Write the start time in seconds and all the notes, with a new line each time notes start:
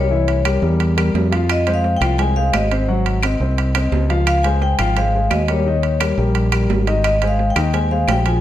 Already playing: C2 C#5
0.11 E3 E4 E5
0.28 high timbale
0.45 G3 G4 A#4, high timbale, low timbale, claves
0.62 E2 G3 G4 A#4
0.80 high timbale
0.96 G3 G4 A#4, high timbale, claves
1.14 F2, low timbale
1.31 F3 F4 F5, high timbale
1.49 D#5, high timbale, claves
1.67 G#3 G#4 C5, high timbale
1.74 F5
1.84 low timbale
1.97 G5
2.01 C2 F3 F4 F5, high timbale, claves
2.18 G#3 G#4 C5 G#5, high timbale
2.36 G#3 G#4 C5 F5
2.53 G#1 D#5, high timbale, low timbale, claves
2.71 C4 C5 D#5, high timbale
2.88 F#3 F#4 F#5
3.06 high timbale
3.23 C4 C5 D#5, high timbale, low timbale, claves
3.40 C2 C4 C5 D#5
3.58 high timbale
3.75 C4 C5 D#5, high timbale, claves
3.92 C#2, low timbale
4.09 F3 F4 F5, high timbale
4.27 F5, high timbale, claves
4.43 G#3 G#4 C5 G#5, high timbale
4.62 G5, low timbale
4.79 G#1 F3 F4 F5 G5, high timbale, claves
4.97 G#3 G#4 C5 F5, high timbale
5.14 G#3 G#4 C5
5.31 D#2 D#5, high timbale, low timbale, claves
5.48 G3 G4 A#4 C#5, high timbale
5.66 D#3 D#4 D#5
5.83 high timbale
6.00 G3 G4 A#4, high timbale, low timbale, claves
6.17 A#1 G3 G4 A#4
6.35 high timbale
6.52 G3 G4 A#4, high timbale, claves
6.69 G#1, low timbale
6.87 D#3 D#4 D#5, high timbale
7.04 D#5, high timbale, claves
7.22 G#3 G#4 C5, high timbale
7.28 F5
7.39 low timbale
7.50 G5
7.56 D#2 D#3 D#4 D#5, high timbale, claves
7.73 G#3 G#4 C5 G#5, high timbale
7.91 G#3 G#4 C5 F5
8.08 A#1 G5, high timbale, low timbale, claves
8.25 F3 F4 G#4 G#5, high timbale